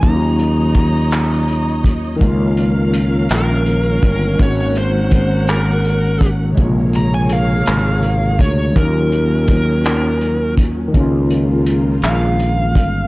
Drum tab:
HH |xxxxxx|xxxxxx|xxxxxx|xxxxxx|
CP |---x--|---x--|---x--|---x--|
BD |o-o--o|o----o|o-o--o|o----o|

HH |xxxxxx|xxxxxx|
CP |---x--|---x--|
BD |o-o--o|o----o|